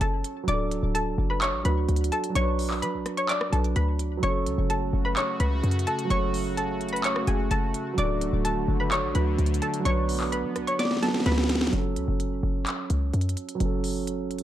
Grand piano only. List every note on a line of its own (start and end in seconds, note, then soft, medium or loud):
0.00 0.41 F#3 medium
0.00 0.44 C#4 medium
0.00 0.47 A4 medium
0.43 1.60 F#3 medium
0.49 1.63 D4 medium
0.54 1.66 A4 medium
1.63 2.28 F#3 medium
1.63 2.33 D4 medium
1.68 2.37 F#4 medium
2.30 3.47 F#3 medium
2.35 3.50 D4 medium
2.40 3.53 B4 medium
3.50 4.16 F#3 medium
3.50 4.23 D4 soft
3.55 4.24 B4 medium
4.17 6.03 F#3 medium
4.22 6.06 C#4 medium
4.28 6.09 A4 medium
6.05 7.91 F#3 medium
6.10 7.94 C#4 medium
6.15 7.97 A4 medium
7.93 9.11 F#3 medium
7.99 9.13 D4 medium
8.04 9.16 A4 medium
9.13 9.78 F#3 medium
9.13 9.83 D4 medium
9.18 9.87 F#4 medium
9.80 10.97 F#3 medium
9.85 11.00 D4 medium
9.90 11.03 B4 medium
11.00 11.66 F#3 medium
11.00 11.73 D4 medium
11.05 11.74 B4 medium
11.67 13.54 F#3 medium
11.73 13.56 C#4 medium
11.78 13.59 A4 medium
13.55 14.43 F#3 medium
13.60 14.43 C#4 medium
13.65 14.43 A4 medium